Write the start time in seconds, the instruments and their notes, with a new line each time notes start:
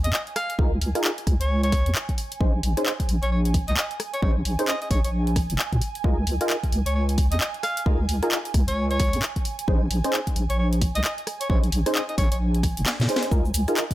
Already playing: ambient pad G#5
0.04 wobble bass F2, alto saxophone D#5, closed hi-hat
0.13 alto saxophone D#5, clap
0.27 closed hi-hat
0.36 alto saxophone F5, cross-stick, open hi-hat
0.50 closed hi-hat
0.59 wobble bass C#2, synth stab D#4 F4 G#4 A#4, kick
0.81 wobble bass C#2, open hi-hat
0.95 synth stab D#4 F4 G#4 A#4, cross-stick, closed hi-hat
1.04 clap
1.18 closed hi-hat
1.27 wobble bass C#2, kick, cross-stick, open hi-hat
1.41 wobble bass C#2, alto saxophone C#5, closed hi-hat
1.63 alto saxophone C#5, closed hi-hat
1.72 kick, cross-stick, open hi-hat
1.86 wobble bass F2, closed hi-hat
1.95 clap
2.09 kick, closed hi-hat
2.18 open hi-hat
2.32 closed hi-hat
2.41 wobble bass A#1, synth stab C#4 D#4 G#4 C5, kick
2.63 wobble bass A#1, open hi-hat
2.77 synth stab C#4 D#4 G#4 C5, cross-stick, closed hi-hat
2.86 clap
3.00 kick, closed hi-hat
3.09 wobble bass A#1, open hi-hat
3.23 wobble bass A#1, alto saxophone C#5, closed hi-hat
3.31 alto saxophone C#5
3.45 closed hi-hat
3.54 kick, open hi-hat
3.68 wobble bass C#2, alto saxophone D#5, closed hi-hat
3.77 alto saxophone D#5, clap
3.91 closed hi-hat
4.00 cross-stick, open hi-hat
4.14 alto saxophone C#5, closed hi-hat
4.22 wobble bass A#1, synth stab C#4 D#4 G#4 C5, alto saxophone C#5, kick
4.45 wobble bass A#1, open hi-hat
4.59 synth stab C#4 D#4 G#4 C5, cross-stick, closed hi-hat
4.68 alto saxophone D#5, clap
4.82 alto saxophone D#5, closed hi-hat
4.91 wobble bass A#1, alto saxophone C#5, kick, cross-stick, open hi-hat
5.04 wobble bass A#1, alto saxophone C#5, closed hi-hat
5.27 closed hi-hat
5.36 kick, cross-stick, open hi-hat
5.50 wobble bass F1, closed hi-hat
5.59 clap
5.73 wobble bass A#2, kick, closed hi-hat
5.81 open hi-hat
5.95 closed hi-hat
6.04 wobble bass C#2, synth stab D#4 F4 G#4 A#4, kick
6.27 wobble bass C#2, open hi-hat
6.41 synth stab D#4 F4 G#4 A#4, cross-stick, closed hi-hat
6.50 clap
6.63 kick, closed hi-hat
6.72 wobble bass C#2, open hi-hat
6.86 wobble bass C#2, alto saxophone C#5, closed hi-hat
6.95 alto saxophone C#5
7.09 closed hi-hat
7.18 kick, open hi-hat
7.32 wobble bass F2, alto saxophone D#5, closed hi-hat
7.40 alto saxophone D#5, clap
7.54 closed hi-hat
7.63 alto saxophone F5, cross-stick, open hi-hat
7.77 closed hi-hat
7.86 wobble bass C#2, synth stab D#4 F4 G#4 A#4, kick
8.09 wobble bass C#2, open hi-hat
8.23 synth stab D#4 F4 G#4 A#4, cross-stick, closed hi-hat
8.32 clap
8.45 closed hi-hat
8.54 wobble bass C#2, kick, cross-stick, open hi-hat
8.68 wobble bass C#2, alto saxophone C#5, closed hi-hat
8.91 alto saxophone C#5, closed hi-hat
9.00 kick, cross-stick, open hi-hat
9.13 wobble bass F2, closed hi-hat
9.22 clap
9.36 kick, closed hi-hat
9.45 open hi-hat
9.59 closed hi-hat
9.68 wobble bass A#1, synth stab C#4 D#4 G#4 C5, kick
9.91 wobble bass A#1, open hi-hat
10.04 synth stab C#4 D#4 G#4 C5, cross-stick, closed hi-hat
10.13 clap
10.27 kick, closed hi-hat
10.36 wobble bass A#1, open hi-hat
10.50 wobble bass A#1, alto saxophone C#5, closed hi-hat
10.59 alto saxophone C#5
10.73 closed hi-hat
10.82 kick, open hi-hat
10.95 wobble bass C#2, alto saxophone D#5, closed hi-hat
11.04 alto saxophone D#5, clap
11.18 closed hi-hat
11.27 cross-stick, open hi-hat
11.41 alto saxophone C#5, closed hi-hat
11.50 wobble bass A#1, synth stab C#4 D#4 G#4 C5, alto saxophone C#5, kick
11.64 closed hi-hat
11.72 wobble bass A#1, open hi-hat
11.86 synth stab C#4 D#4 G#4 C5, cross-stick, closed hi-hat
11.95 alto saxophone D#5, clap
12.09 alto saxophone D#5, closed hi-hat
12.18 wobble bass A#1, alto saxophone C#5, kick, cross-stick, open hi-hat
12.31 wobble bass A#1, alto saxophone C#5, closed hi-hat
12.55 closed hi-hat
12.63 kick, cross-stick, open hi-hat
12.77 wobble bass F1, closed hi-hat
12.86 snare, clap
13.00 wobble bass A#2, snare, closed hi-hat
13.09 synth stab C#4 D#4 G#4 C5, open hi-hat
13.16 snare
13.23 closed hi-hat
13.31 wobble bass C#2, synth stab D#4 F4 G#4 A#4, ambient pad G#5, kick, cabasa
13.45 cabasa
13.54 wobble bass C#2, open hi-hat, cabasa
13.68 synth stab D#4 F4 G#4 A#4, cross-stick, closed hi-hat, cabasa
13.77 clap, cabasa
13.91 kick, closed hi-hat